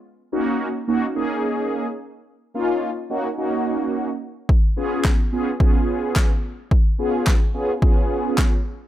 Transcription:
<<
  \new Staff \with { instrumentName = "Analog polysynth" } { \time 4/4 \key ees \minor \tempo 4 = 108 r8 <bes des' ees' ges'>8 r8 <bes des' ees' ges'>8 <bes des' ees' aes'>4~ <bes des' ees' aes'>16 r8. | r8 <bes des' ees' f'>8 r8 <bes des' ees' ges'>8 <bes des' ees' ges'>4~ <bes des' ees' ges'>16 r8. | r8 <ces' des' f' aes'>8 r8 <ces' des' f' aes'>8 <ces' des' f' aes'>4~ <ces' des' f' aes'>16 r8. | r8 <ces' des' f' aes'>8 r8 <ces' des' f' aes'>8 <ces' des' f' aes'>4~ <ces' des' f' aes'>16 r8. | }
  \new DrumStaff \with { instrumentName = "Drums" } \drummode { \time 4/4 r4 r4 r4 r4 | r4 r4 r4 r4 | bd4 <hc bd sn>4 bd4 <hc bd sn>4 | bd4 <hc bd sn>4 bd4 <hc bd sn>4 | }
>>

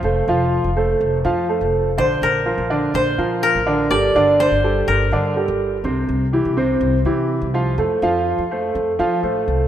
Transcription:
<<
  \new Staff \with { instrumentName = "Koto" } { \time 4/4 \key f \mixolydian \tempo 4 = 124 r1 | c''8 bes'4. c''4 bes'4 | d''4 c''4 bes'4 r4 | r1 |
r1 | }
  \new Staff \with { instrumentName = "Grand piano" } { \time 4/4 \key f \mixolydian <a a' c''>8 <f f' f''>4 <a a' c''>4 <f f' f''>8 <a a' c''>4 | <d d' d''>4 <f f' bes'>8 <d d' d''>4 <f f' bes'>4 <d d' d''>8 | <g g' a'>8 <d d' d''>4 <g g' a'>4 <d d' d''>8 <g g' a'>4 | <c c' c''>4 <e e' g'>8 <c c' c''>4 <e e' g'>4 <f f' f''>8 |
<a a' c''>8 <f f' f''>4 <a a' c''>4 <f f' f''>8 <a a' c''>4 | }
  \new Staff \with { instrumentName = "Upright bass" } { \clef bass \time 4/4 \key f \mixolydian f,,8 f,,8. f,,8. f,,8 f,8. f,,8. | bes,,8 bes,,8. bes,,8. bes,,8 bes,8. a,,8. | g,,8 g,,8. g,,8. g,,8 g,8. g,,8. | c,8 c,8. c,8. c,8 c8. c,8. |
f,8 f,8. f,8. f,8 f8 a,,8 c,8 | }
>>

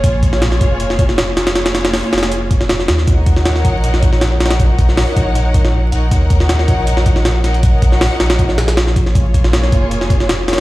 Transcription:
<<
  \new Staff \with { instrumentName = "String section" } { \time 4/4 \key ees \dorian \tempo 4 = 158 <bes f' aes' des''>2.~ <bes f' aes' des''>8 <bes f' aes' des''>8 | <bes f' aes' des''>2.~ <bes f' aes' des''>8 r8 | <ees' bes' des'' ges''>2.~ <ees' bes' des'' ges''>8 <ees' bes' des'' ges''>8 | <ees' bes' des'' ges''>2.~ <ees' bes' des'' ges''>8 <ees' bes' des'' ges''>8 |
<ees' bes' des'' ges''>2.~ <ees' bes' des'' ges''>8 <ees' bes' des'' ges''>8 | <ees' bes' des'' ges''>2.~ <ees' bes' des'' ges''>8 r8 | <bes f' aes' des''>2.~ <bes f' aes' des''>8 <bes f' aes' des''>8 | }
  \new Staff \with { instrumentName = "Sub bass" } { \clef bass \time 4/4 \key ees \dorian bes,,4. f,,2~ f,,8~ | f,,4 r8 f,,2 ees,8 | ees,4. bes,,2~ bes,,8~ | bes,,4 r8 bes,,2 bes,,8 |
ees,4. bes,,2~ bes,,8~ | bes,,4 r8 bes,,2 bes,,8 | bes,,4. f,,2~ f,,8 | }
  \new DrumStaff \with { instrumentName = "Drums" } \drummode { \time 4/4 <hh bd>8 <hh bd>16 sn16 <hh sn>16 sn16 <hh bd>8 hh16 sn16 <hh bd>16 sn16 <hh sn>8 <hh sn>16 <hh sn>16 | <hh sn>16 <hh sn>16 <hh sn>16 <hh sn>16 <hho sn>8 <hh sn>32 <hh sn>32 <hh sn>16 hh8 <hh bd>16 sn16 <hh sn>16 sn16 <hh sn>16 sn16 | <hh bd>8 <hh bd>16 sn16 <hh sn>16 sn16 <hh bd>8 hh16 sn16 <hh bd>16 sn16 <hh sn>8 <hh sn>32 <hh sn>32 <hh sn>16 | <hh bd>8 <hh bd>16 sn16 <hho sn>8 <hh bd>8 hh8 <hh bd>16 sn16 r8 hh8 |
<hh bd>8 <hh bd>16 sn16 <hh sn>16 sn16 <hh bd>8 hh16 sn16 <hh bd>16 sn16 <hh sn>8 <hh sn>16 hh16 | <hh bd>8 <hh bd>16 sn16 <hho sn>8 <hh sn>16 <hh sn>16 <hh bd>16 sn16 <hh sn>16 <hh sn>16 <hh sn>16 sn16 <hh bd>16 sn16 | <hh bd>8 <hh bd>16 sn16 <hh sn>16 sn16 <hh bd>8 hh16 sn16 <hh bd>16 sn16 <hh sn>8 <hh sn>32 <hh sn>16. | }
>>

